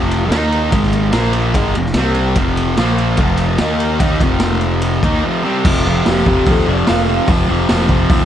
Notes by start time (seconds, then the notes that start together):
Already playing: F1 F2 C3 F3
0.11 ride
0.29 D#2 D#3 A#3 D#4, snare, ride
0.52 ride
0.71 G#1 G#2 D#3 G#3, kick, ride
0.83 snare
0.93 ride
1.12 A#1 A#2 F3 A#3, snare, ride
1.33 ride
1.54 G#1 G#2 D#3 G#3, kick, ride
1.75 F1 F2 C3, ride
1.86 snare
1.94 C2 C3, snare, ride
1.98 G3 C4
2.14 ride
2.35 F1 F2 C3 F3, kick, ride
2.57 ride
2.77 A#1 A#2 F3 A#3, snare, ride
2.98 ride
3.17 F1 F2 C3 F3, kick, ride
3.37 ride
3.58 D#2 D#3 A#3 D#4, snare, ride
3.80 ride
4.00 D#2 D#3 A#3 D#4, kick, ride
4.20 F1 F2 C3 F3, kick, ride
4.40 snare, ride
4.61 ride
4.82 ride
5.03 D#2 D#3 A#3 D#4, kick, ride
5.23 F2 C3 F3
5.44 C3 G3 C4
5.65 F1 F2 C3 F3, kick, crash
5.85 F1 F2 C3 F3
6.05 F1 F2 C3 F3 G4, snare, open hi-hat
6.26 F1 F2 C3 F3, kick
6.46 D#2 F2 C3 F3, kick, open hi-hat
6.51 A4
6.67 F1 F2 C3 F3 D5
6.87 F1 F2 C3 F3 F5, snare, open hi-hat
7.08 F2 C3 F3
7.27 F1 F2 C3 F3, kick, open hi-hat
7.49 F1 F2 C3 F3
7.69 F1 F2 C3 F3, snare, open hi-hat
7.89 F1 F2 C3 F3, kick
8.10 D#2 F2 C3 F3, kick, open hi-hat